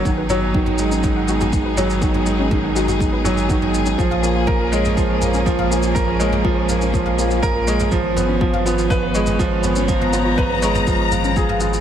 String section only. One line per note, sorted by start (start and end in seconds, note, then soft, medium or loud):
0.00 3.95 F#3 medium
0.00 3.95 D#4 medium
0.05 3.94 B3 medium
0.05 9.85 G#4 medium
3.99 11.80 F3 medium
3.99 7.88 A#3 medium
3.99 7.88 C#4 medium
7.92 11.80 B3 medium
7.92 11.80 C#4 medium
9.89 11.80 A#5 loud